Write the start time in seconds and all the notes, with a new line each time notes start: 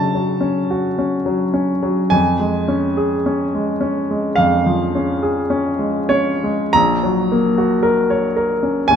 Already playing: C#3 F#3 C#4 F#4 A4 A5
0.14 F#3
0.41 C#4
0.71 F#4
0.98 C#4
1.26 F#3
1.54 C#4
1.83 F#3
2.10 F2 G#5
2.39 G#3
2.68 C#4
2.97 G#4
3.26 C#4
3.55 G#3
3.81 C#4
4.11 G#3
4.36 F2 F5
4.66 F3
4.95 C#4
5.23 G#4
5.50 C#4
5.79 G#3
6.09 C#4 C#5
6.44 G#3
6.73 A#1 A#5
7.03 F#3
7.32 A#3
7.58 F#4
7.83 A#4
8.10 C#5
8.36 A#4
8.63 C#4
8.88 D#2 G#5